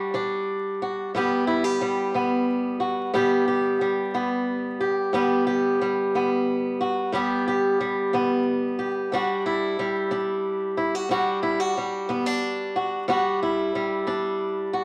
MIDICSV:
0, 0, Header, 1, 2, 480
1, 0, Start_track
1, 0, Key_signature, 1, "minor"
1, 0, Tempo, 662983
1, 824, Time_signature, 12, 3, 24, 8
1, 10745, End_track
2, 0, Start_track
2, 0, Title_t, "Steel-string acoustic guitar"
2, 0, Program_c, 0, 25
2, 0, Note_on_c, 0, 55, 52
2, 0, Note_on_c, 0, 62, 65
2, 0, Note_on_c, 0, 66, 62
2, 96, Note_off_c, 0, 62, 0
2, 100, Note_on_c, 0, 52, 57
2, 104, Note_on_c, 0, 62, 61
2, 534, Note_off_c, 0, 52, 0
2, 586, Note_off_c, 0, 66, 0
2, 594, Note_on_c, 0, 66, 50
2, 796, Note_off_c, 0, 62, 0
2, 801, Note_off_c, 0, 66, 0
2, 830, Note_on_c, 0, 45, 65
2, 835, Note_off_c, 0, 55, 0
2, 838, Note_on_c, 0, 55, 56
2, 842, Note_on_c, 0, 59, 66
2, 850, Note_on_c, 0, 67, 63
2, 1063, Note_off_c, 0, 67, 0
2, 1066, Note_on_c, 0, 64, 62
2, 1187, Note_off_c, 0, 64, 0
2, 1187, Note_on_c, 0, 67, 47
2, 1260, Note_off_c, 0, 45, 0
2, 1309, Note_off_c, 0, 55, 0
2, 1312, Note_on_c, 0, 55, 60
2, 1552, Note_on_c, 0, 52, 55
2, 1554, Note_off_c, 0, 59, 0
2, 1557, Note_on_c, 0, 59, 49
2, 1982, Note_off_c, 0, 52, 0
2, 2024, Note_off_c, 0, 67, 0
2, 2027, Note_on_c, 0, 66, 53
2, 2268, Note_off_c, 0, 66, 0
2, 2270, Note_on_c, 0, 45, 72
2, 2271, Note_off_c, 0, 55, 0
2, 2273, Note_on_c, 0, 55, 61
2, 2274, Note_off_c, 0, 59, 0
2, 2277, Note_on_c, 0, 59, 62
2, 2280, Note_on_c, 0, 67, 72
2, 2514, Note_off_c, 0, 67, 0
2, 2517, Note_on_c, 0, 67, 56
2, 2702, Note_off_c, 0, 45, 0
2, 2756, Note_off_c, 0, 55, 0
2, 2759, Note_on_c, 0, 55, 56
2, 2998, Note_off_c, 0, 59, 0
2, 2999, Note_on_c, 0, 52, 59
2, 3001, Note_on_c, 0, 59, 53
2, 3428, Note_off_c, 0, 52, 0
2, 3476, Note_off_c, 0, 67, 0
2, 3479, Note_on_c, 0, 67, 50
2, 3714, Note_on_c, 0, 45, 71
2, 3717, Note_off_c, 0, 55, 0
2, 3720, Note_on_c, 0, 55, 62
2, 3721, Note_off_c, 0, 59, 0
2, 3724, Note_on_c, 0, 59, 59
2, 3725, Note_off_c, 0, 67, 0
2, 3728, Note_on_c, 0, 67, 67
2, 3954, Note_off_c, 0, 67, 0
2, 3957, Note_on_c, 0, 67, 58
2, 4146, Note_off_c, 0, 45, 0
2, 4206, Note_off_c, 0, 55, 0
2, 4209, Note_on_c, 0, 55, 59
2, 4454, Note_off_c, 0, 59, 0
2, 4454, Note_on_c, 0, 52, 58
2, 4457, Note_on_c, 0, 59, 52
2, 4876, Note_off_c, 0, 52, 0
2, 4925, Note_off_c, 0, 67, 0
2, 4928, Note_on_c, 0, 66, 58
2, 5157, Note_on_c, 0, 45, 75
2, 5161, Note_off_c, 0, 55, 0
2, 5161, Note_off_c, 0, 66, 0
2, 5164, Note_on_c, 0, 55, 63
2, 5170, Note_off_c, 0, 59, 0
2, 5173, Note_on_c, 0, 59, 63
2, 5174, Note_on_c, 0, 67, 78
2, 5409, Note_off_c, 0, 67, 0
2, 5412, Note_on_c, 0, 67, 58
2, 5588, Note_off_c, 0, 45, 0
2, 5648, Note_off_c, 0, 55, 0
2, 5651, Note_on_c, 0, 55, 54
2, 5888, Note_on_c, 0, 52, 63
2, 5891, Note_off_c, 0, 59, 0
2, 5893, Note_on_c, 0, 59, 58
2, 6314, Note_off_c, 0, 52, 0
2, 6360, Note_off_c, 0, 67, 0
2, 6362, Note_on_c, 0, 67, 50
2, 6603, Note_on_c, 0, 40, 65
2, 6610, Note_off_c, 0, 55, 0
2, 6611, Note_off_c, 0, 59, 0
2, 6613, Note_on_c, 0, 55, 63
2, 6614, Note_on_c, 0, 62, 62
2, 6620, Note_off_c, 0, 67, 0
2, 6623, Note_on_c, 0, 66, 65
2, 6845, Note_off_c, 0, 66, 0
2, 6848, Note_on_c, 0, 64, 62
2, 7031, Note_off_c, 0, 40, 0
2, 7087, Note_off_c, 0, 55, 0
2, 7089, Note_on_c, 0, 55, 57
2, 7320, Note_on_c, 0, 52, 60
2, 7321, Note_off_c, 0, 62, 0
2, 7324, Note_on_c, 0, 62, 48
2, 7749, Note_off_c, 0, 52, 0
2, 7797, Note_off_c, 0, 64, 0
2, 7800, Note_on_c, 0, 64, 49
2, 7926, Note_off_c, 0, 64, 0
2, 7926, Note_on_c, 0, 66, 45
2, 8029, Note_on_c, 0, 40, 72
2, 8037, Note_off_c, 0, 66, 0
2, 8038, Note_off_c, 0, 55, 0
2, 8040, Note_off_c, 0, 62, 0
2, 8041, Note_on_c, 0, 55, 61
2, 8043, Note_on_c, 0, 62, 64
2, 8046, Note_on_c, 0, 66, 76
2, 8270, Note_off_c, 0, 66, 0
2, 8273, Note_on_c, 0, 64, 66
2, 8397, Note_off_c, 0, 64, 0
2, 8397, Note_on_c, 0, 66, 51
2, 8463, Note_off_c, 0, 40, 0
2, 8522, Note_off_c, 0, 55, 0
2, 8525, Note_on_c, 0, 55, 53
2, 8749, Note_off_c, 0, 62, 0
2, 8752, Note_on_c, 0, 59, 61
2, 8758, Note_on_c, 0, 52, 54
2, 8877, Note_off_c, 0, 59, 0
2, 8877, Note_on_c, 0, 62, 46
2, 9186, Note_off_c, 0, 52, 0
2, 9228, Note_off_c, 0, 66, 0
2, 9237, Note_on_c, 0, 66, 55
2, 9444, Note_off_c, 0, 66, 0
2, 9469, Note_on_c, 0, 40, 82
2, 9470, Note_off_c, 0, 62, 0
2, 9471, Note_off_c, 0, 55, 0
2, 9473, Note_on_c, 0, 55, 66
2, 9479, Note_on_c, 0, 62, 59
2, 9482, Note_on_c, 0, 66, 74
2, 9715, Note_off_c, 0, 66, 0
2, 9720, Note_on_c, 0, 64, 64
2, 9900, Note_off_c, 0, 40, 0
2, 9954, Note_off_c, 0, 55, 0
2, 9957, Note_on_c, 0, 55, 56
2, 10181, Note_off_c, 0, 62, 0
2, 10186, Note_on_c, 0, 52, 54
2, 10189, Note_on_c, 0, 62, 59
2, 10616, Note_off_c, 0, 52, 0
2, 10663, Note_off_c, 0, 64, 0
2, 10666, Note_on_c, 0, 66, 51
2, 10745, Note_off_c, 0, 55, 0
2, 10745, Note_off_c, 0, 62, 0
2, 10745, Note_off_c, 0, 66, 0
2, 10745, End_track
0, 0, End_of_file